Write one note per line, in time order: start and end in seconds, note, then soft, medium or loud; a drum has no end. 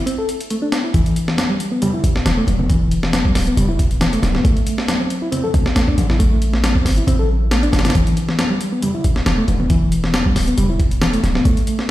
0.07 0.17 C4 loud
0.07 closed hi-hat medium
0.18 0.28 A4 medium
0.29 closed hi-hat medium
0.40 closed hi-hat soft
0.50 0.55 A3 loud
0.50 closed hi-hat medium
0.62 0.68 D4 loud
0.72 snare loud
0.72 closed hi-hat medium
0.84 0.90 E4 medium
0.94 1.02 E1 loud
0.94 1.37 E3 loud
0.94 kick loud
0.94 closed hi-hat medium
1.06 closed hi-hat soft
1.16 closed hi-hat medium
1.28 snare medium
1.38 snare loud
1.38 closed hi-hat medium
1.38 high conga medium
1.50 1.71 G3 medium
1.60 closed hi-hat medium
1.72 1.78 B3 medium
1.82 1.92 G3 loud
1.82 closed hi-hat medium
1.82 low conga loud
1.94 2.03 E4 medium
1.94 high conga medium
2.04 2.15 A1 medium
2.04 closed hi-hat medium
2.16 2.24 E1 soft
2.16 snare soft
2.26 2.41 E1 medium
2.26 2.30 E3 loud
2.26 snare loud
2.26 closed hi-hat medium
2.38 2.44 A3 loud
2.47 3.30 E1 loud
2.47 closed hi-hat medium
2.47 high conga loud
2.59 2.66 B3 medium
2.59 low conga loud
2.70 3.12 E3 loud
2.70 kick loud
2.70 closed hi-hat medium
2.91 closed hi-hat medium
3.03 snare medium
3.13 snare loud
3.13 closed hi-hat medium
3.13 high conga loud
3.25 3.46 G3 medium
3.25 kick loud
3.35 3.50 D1 medium
3.35 snare medium
3.35 open hi-hat medium
3.47 3.53 B3 medium
3.47 closed hi-hat soft
3.57 4.17 E1 medium
3.57 3.68 G3 loud
3.57 closed hi-hat medium
3.57 low conga loud
3.68 3.78 E4 medium
3.68 high conga medium
3.79 kick loud
3.79 closed hi-hat medium
3.91 closed hi-hat soft
4.01 4.05 E3 loud
4.01 snare loud
4.01 closed hi-hat loud
4.13 4.19 A3 loud
4.13 closed hi-hat soft
4.22 4.38 D1 loud
4.22 snare soft
4.22 closed hi-hat medium
4.22 high conga loud
4.34 4.41 B3 medium
4.34 snare soft
4.34 low conga medium
4.44 4.53 A1 loud
4.44 4.87 A3 loud
4.44 kick loud
4.44 closed hi-hat medium
4.57 closed hi-hat soft
4.67 closed hi-hat medium
4.78 snare medium
4.88 snare loud
4.88 closed hi-hat medium
4.88 high conga loud
5.00 5.21 C4 medium
5.10 closed hi-hat medium
5.22 5.28 E4 medium
5.32 5.43 C4 loud
5.32 closed hi-hat medium
5.32 low conga medium
5.44 5.53 A4 medium
5.44 high conga medium
5.54 5.65 D2 medium
5.54 kick loud
5.54 closed hi-hat medium
5.66 5.74 A1 soft
5.66 snare medium
5.76 5.91 A1 medium
5.76 5.80 A3 loud
5.76 snare loud
5.76 closed hi-hat medium
5.87 5.94 D4 loud
5.87 kick loud
5.98 6.80 A1 loud
5.98 closed hi-hat medium
5.98 high conga loud
6.09 6.16 E4 medium
6.09 snare soft
6.09 low conga medium
6.20 6.63 A3 loud
6.20 kick loud
6.20 closed hi-hat medium
6.42 closed hi-hat medium
6.54 snare medium
6.63 snare loud
6.63 closed hi-hat medium
6.63 high conga loud
6.75 6.96 C4 medium
6.75 kick loud
6.85 7.01 G1 medium
6.85 snare medium
6.85 open hi-hat medium
6.97 7.04 E4 medium
6.97 closed hi-hat soft
7.07 7.68 A1 medium
7.07 7.18 C4 loud
7.07 closed hi-hat medium
7.07 low conga medium
7.19 7.29 A4 medium
7.19 high conga medium
7.51 7.56 A3 loud
7.51 snare loud
7.51 closed hi-hat medium
7.63 7.69 D4 loud
7.63 closed hi-hat soft
7.72 7.88 G1 loud
7.72 snare medium
7.72 closed hi-hat medium
7.72 high conga loud
7.79 snare medium
7.79 closed hi-hat medium
7.85 7.91 E4 medium
7.85 snare medium
7.85 closed hi-hat medium
7.85 low conga medium
7.90 snare medium
7.90 closed hi-hat medium
7.95 8.03 E1 loud
7.95 8.38 E3 loud
7.95 kick loud
7.95 closed hi-hat medium
8.07 closed hi-hat soft
8.17 closed hi-hat medium
8.29 snare medium
8.39 snare loud
8.39 closed hi-hat medium
8.39 high conga medium
8.50 8.71 G3 medium
8.61 closed hi-hat medium
8.72 8.79 B3 medium
8.82 8.93 G3 loud
8.82 closed hi-hat medium
8.82 low conga medium
8.94 9.04 E4 medium
8.94 high conga medium
9.04 9.16 A1 medium
9.04 closed hi-hat medium
9.16 9.24 E1 soft
9.16 snare medium
9.26 9.41 E1 medium
9.26 9.31 E3 loud
9.26 snare loud
9.26 closed hi-hat medium
9.38 9.44 A3 loud
9.48 10.30 E1 loud
9.48 closed hi-hat medium
9.48 high conga medium
9.60 9.66 B3 medium
9.60 low conga medium
9.70 10.13 E3 loud
9.70 kick loud
9.70 closed hi-hat medium
9.92 closed hi-hat medium
10.04 snare medium
10.14 snare loud
10.14 closed hi-hat medium
10.14 high conga medium
10.26 10.46 G3 medium
10.26 kick loud
10.36 10.51 D1 loud
10.36 snare medium
10.36 open hi-hat medium
10.47 10.54 B3 medium
10.47 closed hi-hat soft
10.58 11.18 E1 medium
10.58 10.68 G3 loud
10.58 closed hi-hat medium
10.58 low conga medium
10.69 10.79 E4 medium
10.69 high conga medium
10.80 kick loud
10.80 closed hi-hat medium
10.91 closed hi-hat soft
11.02 11.06 E3 loud
11.02 snare loud
11.02 closed hi-hat loud
11.13 11.20 A3 loud
11.13 closed hi-hat soft
11.24 11.39 D1 loud
11.24 snare soft
11.24 closed hi-hat medium
11.24 high conga loud
11.35 11.42 B3 medium
11.35 snare soft
11.35 low conga medium
11.45 11.53 A1 loud
11.45 11.88 A3 loud
11.45 kick loud
11.45 closed hi-hat medium
11.57 closed hi-hat soft
11.67 closed hi-hat medium
11.79 snare medium